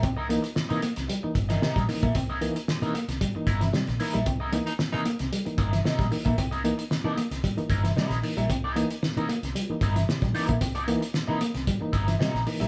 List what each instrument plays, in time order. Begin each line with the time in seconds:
0.03 fingered electric bass C2, reed electric piano C3, clean electric guitar C4, kick, closed hi-hat
0.17 clean electric guitar E4 A#4 D#5, muted clean electric guitar stroke
0.29 reed electric piano E3 A#3 D#4, clean electric guitar A#3, muted clean electric guitar stroke, closed hi-hat
0.42 reed electric piano A#3 D#4, muted clean electric guitar stroke, closed hi-hat
0.55 muted clean electric guitar stroke, muted fingered electric bass stroke, snare
0.69 fingered electric bass C3, reed electric piano E3 A#3 D#4, clean electric guitar E4 A#4 D#5, closed hi-hat
0.82 clean electric guitar A#3, muted clean electric guitar stroke, closed hi-hat
0.96 fingered electric bass C2, reed electric piano C3, muted clean electric guitar stroke, snare, closed hi-hat
1.08 clean electric guitar G3, muted clean electric guitar stroke, closed hi-hat
1.23 reed electric piano E3 A#3 D#4, muted clean electric guitar stroke, muted fingered electric bass stroke
1.35 fingered electric bass G1, muted clean electric guitar stroke, kick, closed hi-hat
1.49 reed electric piano C3, clean electric guitar E3 E4 A#4 D#5, snare, closed hi-hat
1.61 reed electric piano C3, clean electric guitar E4 A#4 D#5, snare
1.76 fingered electric bass A#1, clean electric guitar G3, kick, snare, closed hi-hat
1.88 reed electric piano E3 A#3 D#4, muted clean electric guitar stroke, snare, open hi-hat
2.03 fingered electric bass A#1, clean electric guitar A#3 E4 A#4 E5, reed electric piano A#3 D#4, kick, closed hi-hat
2.15 fingered electric bass C2, reed electric piano C3, clean electric guitar C4, muted clean electric guitar stroke, kick, closed hi-hat
2.30 clean electric guitar E4 A#4 D#5, muted clean electric guitar stroke
2.41 reed electric piano E3 A#3 D#4, clean electric guitar A#3, muted clean electric guitar stroke, closed hi-hat
2.55 reed electric piano A#3 D#4, muted clean electric guitar stroke, closed hi-hat
2.68 muted clean electric guitar stroke, muted fingered electric bass stroke, snare
2.82 fingered electric bass C3, reed electric piano E3 A#3 D#4, clean electric guitar E4 A#4 D#5, closed hi-hat
2.94 clean electric guitar A#3, muted clean electric guitar stroke, closed hi-hat
3.08 fingered electric bass C2, reed electric piano C3, muted clean electric guitar stroke, snare, closed hi-hat
3.21 clean electric guitar G3, kick, closed hi-hat
3.35 reed electric piano E3 A#3 D#4, muted clean electric guitar stroke, muted fingered electric bass stroke
3.47 fingered electric bass G1, clean electric guitar E4 A#4 D#5, muted clean electric guitar stroke, kick, closed hi-hat
3.61 reed electric piano C3, clean electric guitar E3, muted clean electric guitar stroke, snare, closed hi-hat
3.73 reed electric piano C3, clean electric guitar G3, muted clean electric guitar stroke, snare
3.87 fingered electric bass A#1, muted clean electric guitar stroke, snare, closed hi-hat
4.00 reed electric piano E3 A#3 D#4, clean electric guitar E4 A#4 D#5, open hi-hat
4.14 fingered electric bass A#1, clean electric guitar G3 E4 A#4 E5, reed electric piano A#3 D#4, closed hi-hat
4.26 fingered electric bass C2, reed electric piano C3, clean electric guitar C4, muted clean electric guitar stroke, kick, closed hi-hat
4.40 clean electric guitar E4 A#4 D#5, muted clean electric guitar stroke
4.53 reed electric piano E3 A#3 D#4, clean electric guitar A#3, muted clean electric guitar stroke, closed hi-hat
4.66 reed electric piano A#3 D#4, baritone saxophone D#4, muted clean electric guitar stroke, closed hi-hat
4.79 muted clean electric guitar stroke, muted fingered electric bass stroke, snare
4.92 fingered electric bass C3, reed electric piano E3 A#3 D#4, baritone saxophone D#4, clean electric guitar E4 A#4 D#5
5.05 clean electric guitar A#3, muted clean electric guitar stroke, closed hi-hat
5.19 fingered electric bass C2, reed electric piano C3, muted clean electric guitar stroke, snare, closed hi-hat
5.33 clean electric guitar G3, closed hi-hat
5.45 reed electric piano E3 A#3 D#4, muted clean electric guitar stroke, muted fingered electric bass stroke, closed hi-hat
5.58 fingered electric bass G1, clean electric guitar E4 A#4 D#5, muted clean electric guitar stroke, kick, closed hi-hat
5.72 reed electric piano C3, clean electric guitar E3, muted clean electric guitar stroke, snare, closed hi-hat
5.84 reed electric piano C3, clean electric guitar E4 A#4 D#5, snare
5.99 fingered electric bass A#1, clean electric guitar G3, kick, snare, closed hi-hat
6.11 reed electric piano E3 A#3 D#4, muted clean electric guitar stroke, open hi-hat
6.25 fingered electric bass A#1, clean electric guitar A#3 E4 A#4 E5, reed electric piano A#3 D#4, kick, closed hi-hat
6.37 fingered electric bass C2, reed electric piano C3, clean electric guitar C4, muted clean electric guitar stroke, kick, closed hi-hat
6.51 clean electric guitar E4 A#4 D#5, muted clean electric guitar stroke, closed hi-hat
6.64 reed electric piano E3 A#3 D#4, clean electric guitar A#3, muted clean electric guitar stroke, closed hi-hat
6.78 reed electric piano A#3 D#4, muted clean electric guitar stroke, closed hi-hat
6.90 muted fingered electric bass stroke, muted clean electric guitar stroke, snare
7.04 fingered electric bass C3, reed electric piano E3 A#3 D#4, clean electric guitar E4 A#4 D#5
7.17 clean electric guitar A#3, muted clean electric guitar stroke, closed hi-hat
7.31 fingered electric bass C2, reed electric piano C3, muted clean electric guitar stroke, snare, closed hi-hat
7.44 clean electric guitar G3, kick, closed hi-hat
7.57 reed electric piano E3 A#3 D#4, muted clean electric guitar stroke, muted fingered electric bass stroke, closed hi-hat
7.70 fingered electric bass G1, clean electric guitar E4 A#4 D#5, muted clean electric guitar stroke, kick, closed hi-hat
7.84 reed electric piano C3, clean electric guitar E3, muted clean electric guitar stroke, snare, closed hi-hat
7.96 reed electric piano C3, clean electric guitar G3 E4 A#4 D#5, snare
8.10 fingered electric bass A#1, muted clean electric guitar stroke, snare, closed hi-hat
8.23 reed electric piano E3 A#3 D#4, muted clean electric guitar stroke, open hi-hat
8.37 fingered electric bass A#1, clean electric guitar G3 E4 A#4 E5, closed hi-hat
8.50 fingered electric bass C2, reed electric piano C3, clean electric guitar C4, muted clean electric guitar stroke, kick, closed hi-hat
8.64 clean electric guitar E4 A#4 D#5, muted clean electric guitar stroke
8.75 reed electric piano E3 A#3 D#4, clean electric guitar A#3, muted clean electric guitar stroke, closed hi-hat
8.90 muted clean electric guitar stroke, closed hi-hat
9.03 muted fingered electric bass stroke, muted clean electric guitar stroke, snare
9.17 fingered electric bass C3, reed electric piano E3 A#3 D#4, clean electric guitar E4 A#4 D#5, closed hi-hat
9.29 clean electric guitar A#3, muted clean electric guitar stroke, closed hi-hat
9.43 fingered electric bass C2, reed electric piano C3, muted clean electric guitar stroke, snare, closed hi-hat
9.55 clean electric guitar G3, closed hi-hat
9.69 reed electric piano E3 A#3 D#4, muted fingered electric bass stroke, muted clean electric guitar stroke
9.81 fingered electric bass G1, clean electric guitar E4 A#4 D#5, muted clean electric guitar stroke, kick, closed hi-hat
9.96 reed electric piano C3, clean electric guitar E3, muted clean electric guitar stroke, snare, closed hi-hat
10.08 reed electric piano C3, muted fingered electric bass stroke, snare
10.22 fingered electric bass A#1, clean electric guitar G3, muted clean electric guitar stroke, kick, snare, closed hi-hat
10.34 reed electric piano E3 A#3 D#4, clean electric guitar E4 A#4 D#5, muted clean electric guitar stroke, snare, open hi-hat
10.49 fingered electric bass A#1, clean electric guitar A#3, reed electric piano A#3 D#4, muted clean electric guitar stroke, kick, closed hi-hat
10.61 fingered electric bass C2, reed electric piano C3, clean electric guitar C4, muted clean electric guitar stroke, kick, closed hi-hat
10.75 clean electric guitar E4 A#4 D#5, muted clean electric guitar stroke, closed hi-hat
10.88 reed electric piano E3 A#3 D#4, clean electric guitar A#3, muted clean electric guitar stroke, closed hi-hat
11.01 reed electric piano A#3 D#4, muted clean electric guitar stroke, closed hi-hat
11.14 muted clean electric guitar stroke, muted fingered electric bass stroke, snare
11.28 fingered electric bass C3, reed electric piano E3 A#3 D#4, clean electric guitar E4 A#4 D#5
11.40 clean electric guitar A#3, muted clean electric guitar stroke, closed hi-hat
11.54 fingered electric bass C2, reed electric piano C3, muted clean electric guitar stroke, snare, closed hi-hat
11.67 clean electric guitar G3, kick, closed hi-hat
11.81 reed electric piano E3 A#3 D#4, muted clean electric guitar stroke, muted fingered electric bass stroke
11.93 fingered electric bass G1, clean electric guitar E4 A#4 D#5, muted clean electric guitar stroke, kick, closed hi-hat
12.07 reed electric piano C3, clean electric guitar E3, muted clean electric guitar stroke, snare, closed hi-hat
12.19 reed electric piano C3, clean electric guitar G3 E4 A#4 D#5, snare
12.34 fingered electric bass A#1, muted clean electric guitar stroke, snare
12.46 reed electric piano E3 A#3 D#4, muted clean electric guitar stroke, open hi-hat
12.60 fingered electric bass A#1, clean electric guitar G3 E4 A#4 E5, reed electric piano A#3 D#4, closed hi-hat